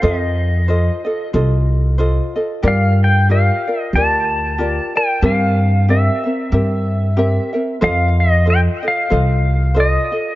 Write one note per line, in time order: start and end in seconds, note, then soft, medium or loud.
0.02 0.87 F2 loud
0.02 0.68 F4 medium
0.02 0.68 A4 medium
0.02 0.67 C5 medium
0.02 0.69 D#5 medium
0.02 1.30 D#5 medium
0.68 1.05 F4 medium
0.68 1.05 A4 medium
0.68 1.05 C5 medium
0.68 1.03 D#5 medium
1.05 1.33 F4 soft
1.05 1.33 A4 medium
1.05 1.33 D#5 medium
1.33 2.18 C2 medium
1.33 1.99 F4 medium
1.33 1.99 A4 medium
1.33 1.97 C5 medium
1.33 1.99 D#5 medium
1.98 2.35 F4 medium
1.98 2.35 A4 medium
1.98 2.35 C5 medium
1.98 2.34 D#5 medium
2.36 2.62 F4 medium
2.36 2.63 A4 medium
2.36 2.64 D#5 medium
2.63 3.48 G2 loud
2.63 3.28 F4 medium
2.63 3.29 G4 medium
2.63 3.30 A#4 medium
2.63 3.29 D5 medium
2.68 3.03 F5 medium
3.04 3.31 G5 medium
3.29 3.66 F4 medium
3.29 3.65 G4 medium
3.29 3.66 A#4 medium
3.29 3.66 D5 medium
3.29 3.80 F5 medium
3.67 3.95 F4 soft
3.67 3.95 A#4 soft
3.67 3.94 D5 soft
3.80 3.97 D#5 medium
3.93 4.77 D2 medium
3.93 4.58 F4 medium
3.93 4.58 G4 medium
3.93 4.60 A#4 medium
3.93 4.59 D5 medium
3.93 4.97 A5 loud
4.58 4.95 F4 medium
4.58 4.95 G4 medium
4.58 4.95 A#4 medium
4.58 4.94 D5 medium
4.95 5.23 F4 soft
4.95 5.22 A#4 medium
4.95 5.23 D5 medium
4.95 5.25 G5 loud
5.22 6.07 G2 loud
5.22 5.89 C4 medium
5.22 5.87 G4 medium
5.22 5.88 A#4 medium
5.22 5.85 F5 medium
5.88 6.25 C4 medium
5.88 6.25 G4 medium
5.88 6.24 A#4 medium
5.88 7.51 E5 medium
5.88 6.22 E5 medium
6.24 6.52 C4 soft
6.24 6.52 A#4 soft
6.24 6.52 E5 soft
6.52 7.36 G2 medium
6.52 7.16 C4 medium
6.52 7.15 G4 medium
6.52 7.17 A#4 medium
6.52 7.18 E5 medium
7.17 7.53 C4 medium
7.17 7.53 G4 medium
7.17 7.53 A#4 medium
7.17 7.52 E5 medium
7.53 7.81 C4 medium
7.53 7.81 A#4 medium
7.53 7.81 E5 medium
7.81 8.66 F2 loud
7.81 8.46 F4 medium
7.81 8.46 A4 medium
7.81 8.44 C5 medium
7.81 8.46 D#5 loud
7.81 8.20 F5 loud
8.20 8.48 D#5 medium
8.45 8.83 F4 medium
8.45 8.82 A4 medium
8.45 8.82 C5 medium
8.45 8.81 D#5 medium
8.50 8.60 G5 loud
8.83 9.09 F4 soft
8.83 9.09 A4 soft
8.83 9.10 D#5 medium
8.88 9.80 F5 loud
9.10 9.95 C2 medium
9.10 9.76 F4 medium
9.10 9.76 A4 medium
9.10 9.73 C5 medium
9.10 9.76 D#5 medium
9.74 10.12 F4 medium
9.74 10.11 A4 medium
9.74 10.12 C5 medium
9.74 10.11 D#5 medium
9.80 10.35 D#5 medium
10.12 10.35 F4 soft
10.12 10.35 A4 soft
10.12 10.35 D#5 medium